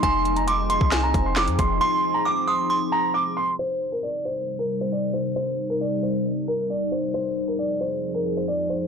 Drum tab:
HH |x-xxx-x-x-x-xxx-|----------------|----------------|----------------|
CP |--------x---x---|----------------|----------------|----------------|
SD |--------o---o---|----------------|----------------|----------------|
BD |o------o--o---o-|----------------|----------------|----------------|

HH |----------------|
CP |----------------|
SD |----------------|
BD |----------------|